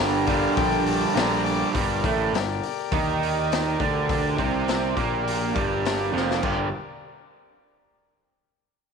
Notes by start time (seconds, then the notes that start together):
Already playing: G2 D3 G3 G4 A#4 D5
0.00 G1
0.27 D3 G3 F5, kick, open hi-hat
0.32 G2
0.57 A#1 G5, kick, open hi-hat
0.87 A5, open hi-hat
1.14 A#1 G2 D3 A#5, snare, open hi-hat
1.20 G3
1.45 D6, open hi-hat
1.74 G1 G2 G3 G4, kick, open hi-hat
1.78 A#4 D5
2.03 A1 A2 A3, kick, open hi-hat
2.33 G1 G2, snare, open hi-hat
2.63 open hi-hat
2.92 D#2 D#3 D#4, kick, open hi-hat
3.23 open hi-hat
3.52 snare, open hi-hat
3.79 D2 D3 D4, kick, open hi-hat
4.09 kick, open hi-hat
4.38 C2 C3 C4, kick, open hi-hat
4.68 snare, open hi-hat
4.96 A#1 A#2 A#3, kick, open hi-hat
5.28 open hi-hat
5.54 G1 G2 G3, kick, open hi-hat
5.85 snare, open hi-hat
6.13 F1 F2 F3
6.17 snare
6.31 snare
6.42 G1 G2 D3 G3 G4 A#4 D5, kick, crash